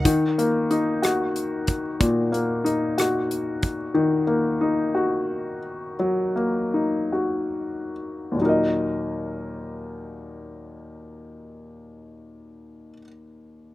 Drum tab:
HH |xxxxxx|xxxxxx|------|------|
SD |---r--|---r--|------|------|
BD |o----o|o----o|------|------|

HH |------|------|
SD |------|------|
BD |------|------|